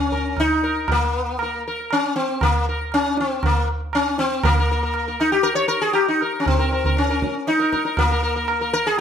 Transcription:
0.00 0.39 C#4 medium
0.12 0.35 A#4 soft
0.12 tabla ge soft
0.37 0.91 D#4 loud
0.37 tabla na medium
0.37 tabla ge medium
0.62 0.87 A#4 soft
0.62 tabla te medium
0.88 1.63 A#3 medium
0.88 tabla na loud
0.88 tabla ge loud
1.39 1.65 A#4 soft
1.39 tabla na medium
1.67 1.90 A#4 soft
1.91 2.15 C#4 loud
1.91 tabla na medium
2.16 2.42 C4 medium
2.16 tabla te medium
2.41 2.66 A#3 medium
2.41 tabla na medium
2.41 tabla ge medium
2.69 2.91 A#4 soft
2.92 3.19 C#4 loud
2.92 tabla na medium
3.17 3.45 C4 medium
3.17 tabla te medium
3.43 3.68 A#3 medium
3.43 tabla na medium
3.43 tabla ge medium
3.93 4.19 C#4 loud
3.93 tabla na medium
4.18 4.43 C4 loud
4.18 tabla te medium
4.44 5.17 A#3 medium
4.44 4.58 A#4 soft
4.44 tabla na loud
4.44 tabla ge loud
4.59 4.70 A#4 soft
4.71 4.82 A#4 soft
4.83 5.06 A#4 soft
4.94 tabla na medium
5.08 5.31 A#4 soft
5.20 5.32 D#4 medium
5.20 tabla na medium
5.32 5.46 G4 medium
5.43 5.55 A#4 loud
5.43 tabla tin medium
5.55 5.68 C#5 loud
5.68 5.81 A#4 medium
5.82 5.93 G#4 medium
5.93 6.08 G4 medium
5.93 tabla na medium
6.08 6.20 D#4 medium
6.21 6.45 A#4 soft
6.21 tabla na medium
6.40 6.46 C#4 medium
6.46 6.98 C4 medium
6.46 tabla na medium
6.46 tabla ge medium
6.59 6.71 A#4 soft
6.71 6.84 A#4 soft
6.71 tabla te medium
6.85 7.08 A#4 soft
6.85 tabla ge medium
6.97 7.49 C#4 medium
6.97 tabla te medium
7.10 7.33 A#4 soft
7.10 tabla te medium
7.22 tabla ke medium
7.35 tabla te medium
7.47 7.99 D#4 loud
7.47 tabla te medium
7.59 7.71 A#4 soft
7.59 tabla te medium
7.72 7.84 A#4 soft
7.72 tabla ke medium
7.85 8.08 A#4 soft
7.85 tabla te medium
7.97 8.75 A#3 medium
7.97 tabla na loud
7.97 tabla ge loud
8.11 8.22 A#4 soft
8.23 8.35 A#4 soft
8.36 8.59 A#4 soft
8.48 tabla na medium
8.61 8.72 A#4 soft
8.73 8.86 A#4 loud
8.87 8.98 G#4 loud

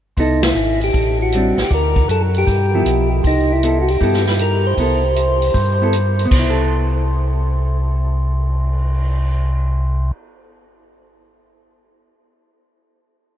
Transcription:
0.17 0.53 C2 medium
0.17 0.41 B3 soft
0.17 0.43 D#4 medium
0.17 0.41 E4 soft
0.17 0.42 A4 medium
0.17 kick soft
0.17 open hi-hat soft
0.43 0.80 E4 medium
0.43 snare medium
0.43 ride medium
0.55 0.91 G#1 medium
0.81 1.18 G4 medium
0.81 open hi-hat soft
0.93 1.54 A1 medium
0.93 kick soft
0.93 open hi-hat soft
1.22 1.61 F#4 medium
1.32 1.57 G3 soft
1.32 1.57 C4 soft
1.32 1.57 D4 medium
1.32 closed hi-hat soft
1.57 1.64 A1 soft
1.57 snare soft
1.57 open hi-hat soft
1.62 1.72 G4 medium
1.70 2.06 D2 medium
1.70 2.09 A#4 medium
1.70 kick soft
1.70 open hi-hat soft
1.96 kick soft
2.08 2.45 F#2 medium
2.08 2.22 A4 medium
2.08 closed hi-hat soft
2.34 3.10 G4 loud
2.34 open hi-hat soft
2.47 2.83 G2 medium
2.47 kick soft
2.47 open hi-hat soft
2.74 3.23 F3 medium
2.74 3.23 B3 medium
2.74 3.23 E4 medium
2.85 3.22 B1 medium
2.85 closed hi-hat medium
3.23 3.97 C2 medium
3.23 3.52 D#4 medium
3.23 kick soft
3.23 open hi-hat soft
3.52 3.79 E4 medium
3.63 3.86 B3 soft
3.63 3.87 E4 medium
3.63 3.87 A4 medium
3.63 closed hi-hat soft
3.81 3.90 F#4 medium
3.88 4.25 G4 medium
3.88 open hi-hat soft
4.01 4.74 G2 medium
4.01 4.25 B3 medium
4.01 4.25 E4 medium
4.01 4.25 A4 medium
4.01 kick soft
4.01 open hi-hat soft
4.14 snare soft
4.26 4.34 B4 medium
4.26 snare soft
4.39 4.67 A#4 medium
4.39 closed hi-hat medium
4.67 5.90 C5 medium
4.77 5.51 C2 medium
4.77 5.02 B3 soft
4.77 5.02 E4 soft
4.77 5.02 A4 medium
4.77 kick soft
4.77 open hi-hat soft
5.16 closed hi-hat soft
5.42 open hi-hat soft
5.54 6.27 G2 medium
5.54 kick soft
5.54 open hi-hat soft
5.82 5.93 B3 medium
5.82 5.93 E4 medium
5.82 5.94 A4 medium
5.93 closed hi-hat medium
6.19 open hi-hat soft
6.25 10.83 B3 medium
6.31 10.11 C2 medium
6.31 kick soft
6.31 crash medium
6.39 10.90 E4 medium
6.50 10.95 A4 medium
6.57 cymbal swell soft

